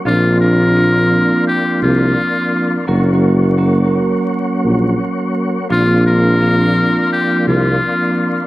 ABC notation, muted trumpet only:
X:1
M:4/4
L:1/8
Q:"Swing 16ths" 1/4=85
K:Bb
V:1 name="Muted trumpet"
F B3 G F3 | z8 | F B3 G F3 |]